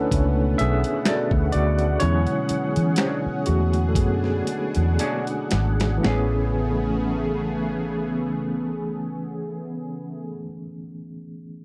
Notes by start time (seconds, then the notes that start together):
Already playing: B2 D3 A3 B3 C#4 D4 E4 A4 B4 C#5 F#5
0.12 C#2 A3 C#4 D4, kick, closed hi-hat
0.58 B1 G#4 E5, closed hi-hat
0.84 closed hi-hat
1.05 F#4 A4 D5, finger snap, snare, closed hi-hat
1.31 D2, kick
1.52 D2 F#4 D5, closed hi-hat
1.79 closed hi-hat
2.00 E2 D3 F#3 G#3 C#4 E4 G#4 C#5, closed hi-hat
2.27 closed hi-hat
2.49 muted fingered electric bass stroke, closed hi-hat
2.76 E3, closed hi-hat
2.96 D4 G#4 C#5, finger snap, snare, closed hi-hat
3.26 muted fingered electric bass stroke
3.46 E2 A3 F#4, closed hi-hat
3.73 closed hi-hat
3.89 A4
3.95 F#2 B3 D4 G#4, kick, closed hi-hat
4.24 snare
4.47 closed hi-hat
4.75 E2, closed hi-hat
4.99 D4 G#4 C#5, closed hi-hat
5.27 closed hi-hat
5.51 G#1, snare, closed hi-hat
5.80 snare, closed hi-hat
5.97 E3 A3
6.03 A1 C#3 A3 B3 C#4 G#4, snare
6.08 G#4 B4